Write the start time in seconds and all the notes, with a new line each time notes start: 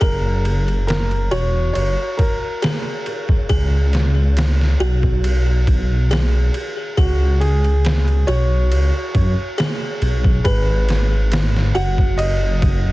0.01 F#1 G#4 A#4, kick, ride
0.45 ride
0.68 ride
0.87 A#4, snare, ride
1.11 ride
1.31 E1 F#4 C#5, ride
1.73 F#1 C#5, ride
2.17 A#4, kick, ride
2.62 G#4, snare, ride
3.06 ride
3.29 kick
3.49 C#2 G#4, kick, ride
3.93 snare, ride
4.37 snare, ride
4.61 snare
4.80 B1 F#4, ride
5.03 kick
5.24 ride
5.67 kick, ride
6.11 G#4, snare, ride
6.54 ride
6.97 C#2 F#4 G#4, kick, ride
7.40 G#4, ride
7.64 ride
7.85 snare, ride
8.08 ride
8.27 B1 F#4 C#5, ride
8.71 C#2, ride
9.15 F#2, kick, ride
9.58 G#4, snare, ride
10.02 B1, ride
10.24 kick
10.44 G#1 G#4 B4, kick, ride
10.89 snare, ride
11.32 snare, ride
11.57 snare
11.75 F#1 F#4 F#5, ride
11.98 kick
12.18 D#5, ride
12.62 kick, ride